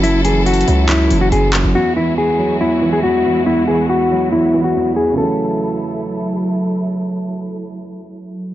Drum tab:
HH |x--x--xxxx--x--x--x--x--|------------------------|------------------------|------------------------|
CP |------------x--------x--|------------------------|------------------------|------------------------|

HH |------------------------|
CP |------------------------|